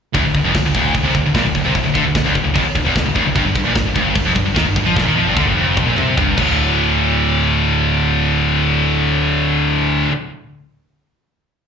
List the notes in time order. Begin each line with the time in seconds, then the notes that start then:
0.14 D1 D2, kick, crash
0.24 D1 D2
0.34 D1 D2, kick, crash
0.43 F1 F2
0.54 D1 D2, kick, snare, crash
0.64 D1 D2
0.74 D1 D2, kick, crash
0.94 D1 D2, kick, crash
1.04 C2 C3
1.14 D1 D2, kick, crash
1.23 D1 D2
1.35 A#1 A#2, kick, snare, crash
1.45 D1 D2
1.55 D1 D2, kick, crash
1.65 C2 C3
1.75 D1 D2, kick, crash
1.85 D1 D2
1.95 D2 D3, kick, crash
2.03 D1 D2
2.15 D1 D2, kick, snare, crash
2.23 D1 D2
2.35 D1 D2, kick, crash
2.44 D1 D2
2.54 F1 F2, kick, crash
2.64 muted picked electric bass stroke, muted distorted electric guitar stroke
2.75 D1 D2, kick, crash
2.85 E1 E2
2.95 D1 D2, kick, snare, crash
3.04 D1 D2
3.15 D1 D2, kick, crash
3.25 D1 D2
3.35 G1 G2, kick, crash
3.44 G1 G2
3.55 G1 G2, kick, crash
3.63 A#1 A#2
3.75 G1 G2, kick, snare, crash
3.83 G1 G2
3.94 G1 G2, kick, crash
4.15 G1 G2, kick, crash
4.25 F1 F2
4.35 G1 G2, kick, crash
4.45 G1 G2
4.55 D#2 D#3, kick, snare, crash
4.65 G1 G2
4.75 G1 G2, kick, crash
4.86 F2 F3
4.96 A#1 A#2, kick, snare
5.04 D#2 D#3
5.08 D#3
5.15 F2 F3
5.26 G1 G2
5.36 D2 D3, kick, high tom
5.45 G1 G2
5.55 F1 F2
5.77 kick, mid tom
5.87 A#1 A#2
5.96 C2 C3, mid tom
6.17 G1 G2, kick, floor tom
6.36 D1 D2 A2, kick, crash
6.40 D3